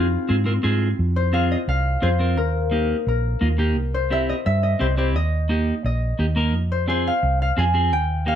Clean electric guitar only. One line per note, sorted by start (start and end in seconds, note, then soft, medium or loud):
0.29 0.35 C4 medium
0.29 0.35 F4 medium
0.29 0.35 G#4 medium
0.46 0.52 C4 medium
0.46 0.52 F4 medium
0.46 0.53 A#4 medium
0.63 0.88 C4 medium
0.63 0.88 F4 medium
0.63 0.88 G#4 medium
1.33 1.57 C4 medium
1.33 1.58 F4 medium
1.33 1.58 G#4 medium
2.02 2.08 C4 medium
2.02 2.09 F4 medium
2.02 2.09 G#4 medium
2.19 2.37 C4 medium
2.19 2.37 F4 medium
2.19 2.38 A#4 medium
2.71 2.96 A#3 medium
2.71 2.96 D#4 medium
2.71 2.96 G4 medium
3.41 3.47 A#3 medium
3.41 3.47 D#4 medium
3.41 3.48 F4 medium
3.58 3.76 A#3 medium
3.58 3.76 D#4 medium
3.58 3.76 G4 medium
4.10 4.35 C4 medium
4.10 4.35 E4 medium
4.10 4.35 G4 medium
4.79 4.86 C4 medium
4.79 4.86 E4 medium
4.79 4.86 G4 medium
4.97 5.15 C4 medium
4.97 5.15 E4 soft
4.97 5.15 G4 medium
5.49 5.74 A#3 medium
5.49 5.74 D#4 medium
5.49 5.74 G4 medium
6.19 6.25 A#3 medium
6.19 6.25 D#4 medium
6.19 6.25 G4 medium
6.36 6.54 A#3 medium
6.36 6.54 D#4 medium
6.36 6.54 A#4 medium
6.88 7.12 C4 medium
6.88 7.12 F4 medium
6.88 7.13 G#4 medium
7.57 7.63 C4 medium
7.57 7.64 F4 medium
7.57 7.64 G#4 medium
7.74 7.92 C4 medium
7.74 7.92 F4 soft
7.74 7.92 G#4 medium
8.26 8.35 A#3 medium
8.26 8.35 D#4 medium
8.26 8.35 G4 medium